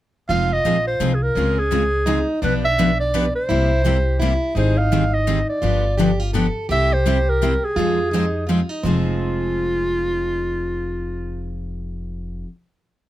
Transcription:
0.29 upright bass F1, steel-string acoustic guitar F3 G#3 C4 D#4 F4 G#4 C5, clarinet F5
0.53 clarinet D#5
0.65 upright bass A#1, steel-string acoustic guitar F3 G#3 C4 D#4 F4 G#4 C5
0.87 clarinet C5
1.00 upright bass C2, steel-string acoustic guitar F3 G#3 C4 D#4 F4 G#4 C5
1.14 clarinet G#4
1.23 clarinet A#4
1.35 upright bass C#2, steel-string acoustic guitar C#3 G#3 C4 C#4 F4 G#4
1.59 clarinet G#4
1.71 steel-string acoustic guitar C#3 G#3 C4 F4 G#4
2.06 steel-string acoustic guitar C#3 G#3 C4 D#4 F4 G#4
2.43 upright bass B1, steel-string acoustic guitar B2 F3 B3 D4 G4 B4, clarinet B4
2.65 clarinet E5
2.79 steel-string acoustic guitar B2 F3 B3 D4 G4 B4
3.00 clarinet D5
3.14 steel-string acoustic guitar B2 F3 B3 D4 G4 B4
3.35 clarinet C5
3.49 upright bass C2, steel-string acoustic guitar C3 G3 A#3 E4 G4
3.85 steel-string acoustic guitar C3 G3 A#3 E4 G4
4.21 steel-string acoustic guitar C3 G3 A#3 E4 G4
4.56 upright bass G#1, steel-string acoustic guitar D#3 G3 C4 D#4 G#4, clarinet C5
4.78 clarinet F5
4.92 steel-string acoustic guitar D#3 G3 C4 D#4 G#4
5.13 clarinet D#5
5.27 steel-string acoustic guitar D#3 G3 C4 D#4 G#4
5.49 clarinet D5
5.62 upright bass G1, steel-string acoustic guitar D3 F3 B3 D4 F4 G4
5.98 steel-string acoustic guitar D3 F3 B3 D4 G4
6.20 steel-string acoustic guitar F4
6.33 steel-string acoustic guitar D3 F3 B3 D4 G4 A4
6.69 upright bass C2, steel-string acoustic guitar C3 G3 C4 E4 G4, clarinet E5
6.93 clarinet C5
7.06 steel-string acoustic guitar C3 G3 C4 E4 G4
7.29 clarinet A#4
7.43 steel-string acoustic guitar C3 G3 C4 E4 G4
7.65 clarinet G#4
7.76 upright bass F2, steel-string acoustic guitar F3 G#3 C4 D#4 F4 G#4 C5
8.14 steel-string acoustic guitar F3 G#3 C4 D#4 F4 G#4 C5
8.49 steel-string acoustic guitar F3 G#3 C4 D#4 F4 G#4 C5
8.69 steel-string acoustic guitar D#4
8.83 upright bass F1, steel-string acoustic guitar F3 G#3 C4 D#4 F4 G#4 C5, clarinet F4

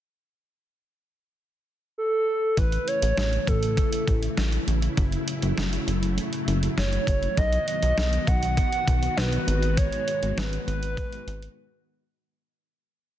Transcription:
1.98 soft synth lead A4
2.57 analog synth bass A1, string machine C#3 E3 A3 E4, soft synth lead B4, kick, closed hi-hat
2.72 closed hi-hat
2.88 soft synth lead C#5, closed hi-hat
3.02 analog synth bass A1, closed hi-hat
3.17 analog synth bass A1, snare, closed hi-hat
3.33 closed hi-hat
3.47 analog synth bass A1, soft synth lead A4, kick, closed hi-hat
3.63 closed hi-hat
3.77 kick, closed hi-hat
3.93 closed hi-hat
4.08 analog synth bass A1, kick, closed hi-hat
4.23 closed hi-hat
4.37 analog synth bass A1, snare, closed hi-hat
4.52 closed hi-hat
4.67 analog synth bass A1, closed hi-hat
4.82 closed hi-hat
4.97 analog synth bass F#1, string machine F#3 A3, kick, closed hi-hat
5.12 closed hi-hat
5.28 closed hi-hat
5.42 analog synth bass F#1, closed hi-hat
5.57 analog synth bass F#1, snare, closed hi-hat
5.73 closed hi-hat
5.87 analog synth bass F#1, closed hi-hat
6.03 closed hi-hat
6.18 closed hi-hat
6.33 closed hi-hat
6.48 analog synth bass F#1, closed hi-hat
6.63 closed hi-hat
6.78 analog synth bass F#1, soft synth lead C#5, snare, closed hi-hat
6.93 closed hi-hat
7.07 analog synth bass F#1, kick, closed hi-hat
7.23 closed hi-hat
7.37 analog synth bass B1, string machine D#3 B3 F#4, soft synth lead D#5, kick, closed hi-hat
7.53 closed hi-hat
7.67 soft synth lead D#5, closed hi-hat
7.83 analog synth bass B1, closed hi-hat
7.98 analog synth bass B1, snare, closed hi-hat
8.13 closed hi-hat
8.27 analog synth bass B1, soft synth lead F#5, kick, closed hi-hat
8.43 closed hi-hat
8.57 kick, closed hi-hat
8.72 closed hi-hat
8.88 analog synth bass B1, kick, closed hi-hat
9.03 closed hi-hat
9.17 analog synth bass B1, soft synth lead B4, snare, closed hi-hat
9.33 closed hi-hat
9.47 analog synth bass G#1, string machine G#3, closed hi-hat
9.63 closed hi-hat
9.77 soft synth lead C#5, kick, closed hi-hat
9.92 closed hi-hat
10.08 closed hi-hat
10.22 analog synth bass G#1, closed hi-hat
10.37 analog synth bass G#1, soft synth lead B4, snare, closed hi-hat
10.53 closed hi-hat
10.67 analog synth bass G#1, soft synth lead B4, closed hi-hat
10.83 closed hi-hat
10.97 kick, closed hi-hat
11.12 closed hi-hat
11.27 analog synth bass G#1, closed hi-hat
11.42 closed hi-hat

